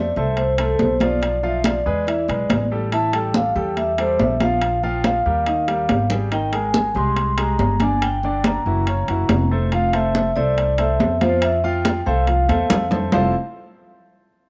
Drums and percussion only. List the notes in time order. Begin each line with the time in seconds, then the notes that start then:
0.16 high conga
0.37 high conga, high timbale
0.58 high conga, high timbale
0.79 high conga, low timbale
1.00 high conga, high timbale
1.22 high conga, high timbale
1.43 high conga
1.64 high conga, high timbale, low timbale
2.07 high conga, high timbale
2.28 high conga, high timbale
2.50 high conga, high timbale, low timbale
2.92 high conga, high timbale
3.13 high conga, high timbale
3.34 high conga, low timbale
3.56 high conga
3.77 high conga, high timbale
3.98 high conga, high timbale
4.19 high conga, low timbale
4.40 high conga, high timbale
4.62 high conga, high timbale
4.83 high conga
5.04 high conga, high timbale, low timbale
5.46 high conga, high timbale
5.68 high conga, high timbale
5.89 high conga, high timbale, low timbale
6.10 low conga
6.32 high conga, high timbale
6.52 high conga, high timbale
6.74 high conga, low timbale
6.95 high conga
7.16 high conga, high timbale
7.38 high conga, high timbale
7.59 high conga, low timbale
7.80 high conga, high timbale
8.02 high conga, high timbale
8.23 high conga
8.44 high conga, high timbale, low timbale
8.87 high conga, high timbale
9.08 high conga, high timbale
9.29 high conga, high timbale, low timbale
9.72 high conga, high timbale
9.93 high conga, high timbale
10.15 high conga, low timbale
10.37 high conga
10.58 high conga, high timbale
10.78 high conga, high timbale
11.00 high conga, low timbale
11.21 high conga, high timbale
11.42 high conga, high timbale
11.64 high conga
11.85 high conga, high timbale, low timbale
12.27 high conga, high timbale
12.49 high conga, high timbale
12.70 low conga, high timbale, low timbale
12.91 low conga, high timbale
13.12 low conga, low timbale